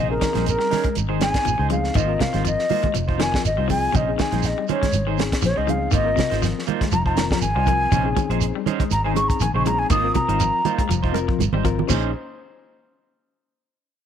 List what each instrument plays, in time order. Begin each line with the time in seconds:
Already playing: fingered electric bass A#1, clean electric guitar C3 D#4 G#4 C5
0.09 reed electric piano C4 C#4 D#4 G#4, flute A#4
0.21 clean electric guitar D#3, kick, snare, closed hi-hat, high conga, shekere
0.33 fingered electric bass A#1, clean electric guitar F3 D#4 G#4 C5, snare, closed hi-hat, high conga
0.46 flute A#4, closed hi-hat, shekere
0.59 clean electric guitar G3, snare
0.70 clean electric guitar C#4 D#4 G#4, muted clean electric guitar stroke, snare, open hi-hat, high conga, low conga, shekere
0.84 clean electric guitar G#3, kick, closed hi-hat
0.95 fingered electric bass G#1, closed hi-hat, high conga, shekere
1.09 clean electric guitar D#3 D#4 G#4 C5
1.20 reed electric piano C4 C#4 D#4 G#4, flute G#5, snare, closed hi-hat, high conga, shekere
1.34 kick, snare, closed hi-hat
1.45 fingered electric bass A#1, clean electric guitar F3, closed hi-hat, shekere
1.58 fingered electric bass C#2, clean electric guitar C#3 D#4 G#4 C5
1.70 clean electric guitar F3, reed electric piano C4 C#4 D#4 G#4, flute F5, closed hi-hat, high conga, shekere
1.84 snare
1.94 fingered electric bass G#1, clean electric guitar D#3 A#3 F4 C5, flute D#5, muted clean electric guitar stroke, kick, closed hi-hat, low conga, shekere
2.08 reed electric piano C4 F4 A#4
2.19 clean electric guitar C3, flute F5, kick, snare, closed hi-hat, high conga, shekere
2.33 fingered electric bass G#1, clean electric guitar D#3 D#4 F4 C5, snare, closed hi-hat, high conga
2.45 clean electric guitar F3, flute D#5, closed hi-hat, shekere
2.59 snare
2.69 clean electric guitar A#3 D#4 F4 C5, open hi-hat, high conga, low conga, shekere
2.83 clean electric guitar G#3, kick, closed hi-hat, low conga
2.94 fingered electric bass F1, clean electric guitar F3, closed hi-hat, shekere
3.08 clean electric guitar D#4 F4 C5, kick
3.18 clean electric guitar D#3, reed electric piano C4 F4 A#4, flute G#5, snare, closed hi-hat, high conga, shekere
3.32 clean electric guitar F3, kick, snare
3.45 fingered electric bass G#1, flute D#5, closed hi-hat, shekere
3.57 fingered electric bass C2, clean electric guitar G3 D#4 F4 C5
3.68 clean electric guitar F3, reed electric piano C4 F4 G#4, flute G#5, kick, open hi-hat, high conga, shekere
3.92 fingered electric bass A#1, clean electric guitar C3 C#4 D#4 G#4 C5, flute D#5, kick, closed hi-hat, low conga, shekere
4.07 reed electric piano C4 C#4 D#4 G#4
4.18 clean electric guitar D#3, flute G#5, kick, snare, closed hi-hat, high conga, shekere
4.32 fingered electric bass A#1, clean electric guitar F3 D#4 G#4 C5, snare, closed hi-hat, high conga
4.43 flute D#5, snare, closed hi-hat, shekere
4.58 clean electric guitar G3
4.68 clean electric guitar C#4 D#4 G#4 C5, flute C#5, closed hi-hat, high conga, low conga, shekere
4.82 clean electric guitar G#3, kick, snare, closed hi-hat, low conga
4.92 fingered electric bass G#1, closed hi-hat, high conga, shekere
5.07 clean electric guitar D#3 D#4 G#4 C5
5.17 reed electric piano C4 C#4 D#4 G#4, snare, closed hi-hat, high conga, shekere
5.32 kick, snare, closed hi-hat
5.42 fingered electric bass A#1, clean electric guitar F3, flute C#5, snare, closed hi-hat, shekere
5.56 fingered electric bass C#2, clean electric guitar C#3 D#4 G#4 C5, flute D#5
5.67 clean electric guitar F3, reed electric piano C4 C#4 D#4 G#4, flute F5, closed hi-hat, high conga, shekere
5.91 fingered electric bass G#1, clean electric guitar D#3 A#3 D#4 F4 C5, flute D#5, kick, closed hi-hat, low conga, shekere
6.04 reed electric piano C4 F4 A#4
6.16 clean electric guitar C3, kick, snare, closed hi-hat, high conga, shekere
6.30 fingered electric bass G#1, clean electric guitar D#3 D#4 F4 C5, snare, closed hi-hat
6.42 clean electric guitar F3, snare, closed hi-hat, shekere
6.59 snare
6.66 clean electric guitar A#3 D#4 F4 C5, closed hi-hat, high conga, low conga, shekere
6.81 clean electric guitar G#3, kick, snare, closed hi-hat, low conga
6.92 fingered electric bass F1, clean electric guitar F3, flute A#5, closed hi-hat, high conga, shekere
7.06 clean electric guitar D#4 F4 C5, flute A#5, kick
7.15 clean electric guitar D#3, reed electric piano C4 F4 A#4, snare, closed hi-hat, high conga, shekere
7.31 clean electric guitar F3, flute A#5, kick, snare
7.41 fingered electric bass G#1, flute G#5, closed hi-hat, shekere
7.55 fingered electric bass C2, clean electric guitar G3 D#4 F4 C5
7.65 clean electric guitar F3, reed electric piano C4 F4 A#4, kick, closed hi-hat, high conga, shekere
7.92 fingered electric bass A#1, clean electric guitar C3 C#4 D#4 G#4 C5, kick, closed hi-hat, low conga, shekere
8.04 reed electric piano C4 C#4 D#4 G#4
8.16 clean electric guitar D#3, kick, closed hi-hat, high conga, shekere
8.30 fingered electric bass A#1, clean electric guitar F3 D#4 G#4 C5, closed hi-hat
8.41 closed hi-hat, shekere
8.55 clean electric guitar G3
8.66 clean electric guitar C#4 D#4 G#4 C5, closed hi-hat, high conga, low conga, shekere
8.79 clean electric guitar G#3, kick, closed hi-hat, low conga
8.91 fingered electric bass G#1, flute A#5, closed hi-hat, high conga, shekere
9.04 clean electric guitar D#3 D#4 G#4 C5, flute G#5
9.13 reed electric piano C4 C#4 D#4 G#4, flute C#6, closed hi-hat, high conga, shekere
9.28 flute A#5, kick, closed hi-hat
9.40 fingered electric bass A#1, clean electric guitar D#3, flute G#5, closed hi-hat, shekere
9.54 fingered electric bass A#1, clean electric guitar C#3 D#4 G#4 C5, flute C#6
9.64 clean electric guitar F3, reed electric piano C4 C#4 D#4 G#4, flute A#5, closed hi-hat, high conga, shekere
9.79 flute G#5
9.90 fingered electric bass G#1, clean electric guitar D#3 A#3 D#4 F4 C5, flute D#6, kick, closed hi-hat, low conga, shekere
10.03 reed electric piano C4 F4 A#4
10.15 clean electric guitar C3, flute A#5, kick, closed hi-hat, high conga, shekere
10.28 fingered electric bass G#1, clean electric guitar D#3 D#4 F4 C5, closed hi-hat, high conga
10.40 clean electric guitar F3, closed hi-hat, shekere
10.65 clean electric guitar A#3 D#4 F4 C5, closed hi-hat, high conga, low conga, shekere
10.78 clean electric guitar G#3, kick, closed hi-hat
10.89 fingered electric bass F1, clean electric guitar F3, closed hi-hat, high conga, shekere
11.03 clean electric guitar D#4 F4 C5, kick
11.12 reed electric piano C4 F4 A#4, closed hi-hat, high conga
11.17 shekere
11.28 clean electric guitar F3, kick
11.39 fingered electric bass G#1, closed hi-hat, high conga, shekere
11.52 fingered electric bass G#1, clean electric guitar G3 D#4 C5, low conga
11.64 clean electric guitar F3, reed electric piano C4 F4 A#4, kick, closed hi-hat, low conga, shekere
11.79 low conga
11.88 fingered electric bass A#1, clean electric guitar A#2 C#4 D#4 G#4 C5, reed electric piano C#4 D#4 G#4 C5, kick, crash, low conga, shekere